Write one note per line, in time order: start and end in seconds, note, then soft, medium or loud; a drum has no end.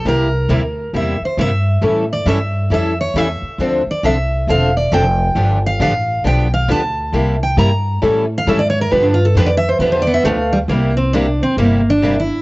0.05 0.48 C2 medium
0.05 0.26 C3 medium
0.05 0.26 G3 medium
0.05 0.27 A#3 medium
0.05 0.27 E4 medium
0.05 0.27 G4 medium
0.05 0.91 A#4 medium
0.49 0.92 D2 medium
0.49 0.61 C3 medium
0.49 0.61 G3 medium
0.49 0.61 A#3 medium
0.49 0.61 E4 medium
0.49 0.61 G4 medium
0.93 1.19 E2 medium
0.93 1.15 C3 medium
0.93 1.15 G3 medium
0.93 1.15 A#3 medium
0.93 1.15 E4 medium
0.93 1.15 G4 medium
0.93 1.22 E5 medium
1.21 muted upright bass stroke soft
1.25 1.39 C5 medium
1.37 1.81 G2 medium
1.37 1.49 C3 medium
1.37 1.50 G3 medium
1.37 1.50 A#3 medium
1.37 1.50 E4 medium
1.37 1.50 G4 medium
1.37 2.07 E5 medium
1.82 2.25 A2 medium
1.82 2.03 E3 medium
1.82 2.03 G3 medium
1.82 2.03 C#4 medium
1.82 2.04 E4 medium
1.82 2.04 A4 medium
2.13 2.27 D5 medium
2.26 2.69 G2 medium
2.26 2.37 E3 medium
2.26 2.37 G3 medium
2.26 2.38 C#4 medium
2.26 2.38 E4 medium
2.26 2.38 A4 medium
2.26 2.69 E5 medium
2.70 3.13 F2 medium
2.70 2.92 E3 medium
2.70 2.92 G3 medium
2.70 2.92 C#4 medium
2.70 2.92 E4 medium
2.70 2.93 A4 medium
2.70 2.99 E5 medium
3.01 3.18 C#5 medium
3.14 3.40 E2 medium
3.14 3.27 E3 medium
3.14 3.27 G3 medium
3.14 3.27 C#4 medium
3.14 3.27 E4 medium
3.14 3.27 A4 medium
3.14 3.88 E5 medium
3.42 muted upright bass stroke soft
3.58 3.85 D2 medium
3.58 3.81 D3 medium
3.58 3.81 F3 medium
3.58 3.81 C4 medium
3.58 3.81 D4 medium
3.58 3.81 A4 medium
3.86 muted upright bass stroke soft
3.91 4.05 D5 medium
4.03 4.47 C2 medium
4.03 4.15 D3 medium
4.03 4.15 F3 medium
4.03 4.15 C4 medium
4.03 4.16 D4 medium
4.03 4.16 A4 medium
4.03 4.46 E5 medium
4.47 4.91 E1 medium
4.47 4.69 D3 medium
4.47 4.70 F3 medium
4.47 4.70 C4 medium
4.47 4.70 D4 medium
4.47 4.70 A4 medium
4.47 4.76 F5 loud
4.77 4.92 D5 medium
4.92 5.34 F1 medium
4.92 5.04 D3 medium
4.92 5.03 F3 medium
4.92 5.04 C4 medium
4.92 5.04 D4 medium
4.92 5.04 A4 medium
4.92 5.61 G5 loud
5.35 5.79 G1 medium
5.35 5.57 D3 medium
5.35 5.57 F3 medium
5.35 5.57 B3 medium
5.35 5.58 D4 medium
5.35 5.58 G4 medium
5.66 5.81 F5 medium
5.80 6.23 A1 medium
5.80 5.92 D3 medium
5.80 5.92 F3 medium
5.80 5.92 B3 medium
5.80 5.92 D4 medium
5.80 5.92 G4 loud
5.80 6.23 F5 medium
6.24 6.68 B1 medium
6.24 6.46 D3 medium
6.24 6.46 F3 medium
6.24 6.46 B3 medium
6.24 6.46 D4 medium
6.24 6.46 G4 medium
6.24 6.53 G5 medium
6.54 6.70 F5 medium
6.68 7.12 D2 medium
6.68 6.81 D3 medium
6.68 6.80 F3 medium
6.68 6.80 B3 medium
6.68 6.81 D4 medium
6.68 6.81 G4 loud
6.68 7.39 A5 medium
7.13 7.56 C2 medium
7.13 7.35 C3 medium
7.13 7.35 G3 medium
7.13 7.35 A#3 medium
7.13 7.35 E4 medium
7.13 7.35 G4 medium
7.43 7.58 G5 medium
7.57 8.01 G2 loud
7.57 7.69 C3 medium
7.57 7.69 G3 medium
7.57 7.69 A#3 medium
7.57 7.69 E4 loud
7.57 7.70 G4 loud
7.57 8.00 A#5 medium
8.02 8.46 A2 medium
8.02 8.24 E3 medium
8.02 8.24 G3 medium
8.02 8.24 C#4 medium
8.02 8.24 E4 medium
8.02 8.24 A4 medium
8.38 8.49 F5 medium
8.47 8.90 G#2 medium
8.47 8.58 E3 medium
8.47 8.58 G3 medium
8.47 8.59 C#4 loud
8.47 8.59 E4 medium
8.47 8.59 A4 loud
8.47 8.61 E5 medium
8.59 8.69 D5 medium
8.70 8.80 C#5 medium
8.81 8.92 A#4 medium
8.91 9.34 G2 medium
8.91 9.13 D3 medium
8.91 9.13 F3 medium
8.91 9.13 B3 medium
8.91 9.13 D4 medium
8.91 9.13 G4 medium
8.91 9.05 B4 medium
9.03 9.18 D4 medium
9.14 9.25 F4 medium
9.25 9.37 A4 medium
9.35 9.78 F2 medium
9.35 9.48 D3 medium
9.35 9.48 F3 medium
9.35 9.48 B3 loud
9.35 9.48 D4 loud
9.35 9.48 G4 loud
9.35 9.50 B4 medium
9.46 9.57 D5 medium
9.57 9.69 E5 loud
9.69 9.79 C5 medium
9.79 10.23 E2 medium
9.79 10.02 D3 medium
9.79 10.02 F3 medium
9.79 10.02 B3 medium
9.79 10.02 D4 medium
9.79 10.02 G4 medium
9.79 9.92 B4 medium
9.92 10.07 C5 medium
10.02 10.13 D5 loud
10.07 10.23 B3 medium
10.14 10.23 E5 medium
10.24 10.68 D2 medium
10.24 10.36 D3 medium
10.24 10.37 F3 medium
10.24 10.54 A3 medium
10.24 10.37 B3 medium
10.24 10.37 D4 medium
10.24 10.37 G4 medium
10.24 10.59 F5 medium
10.53 10.58 G3 medium
10.68 11.40 C2 medium
10.68 10.91 C3 medium
10.68 10.91 G3 medium
10.68 10.96 A#3 medium
10.68 10.91 A#3 medium
10.68 10.91 E4 medium
10.68 10.91 G4 medium
10.97 11.13 C4 medium
11.13 11.25 C3 medium
11.13 11.26 G3 medium
11.13 11.26 A#3 medium
11.13 11.42 D4 medium
11.13 11.26 E4 medium
11.13 11.26 G4 medium
11.43 11.58 C4 medium
11.57 12.29 G1 medium
11.57 11.79 C3 medium
11.57 11.80 G3 medium
11.57 11.80 A#3 medium
11.57 11.89 A#3 medium
11.57 11.80 E4 medium
11.57 11.80 G4 medium
11.90 12.20 D4 medium
12.02 12.14 C3 medium
12.02 12.14 G3 medium
12.02 12.14 A#3 medium
12.02 12.14 E4 medium
12.02 12.14 G4 medium
12.19 12.42 E4 medium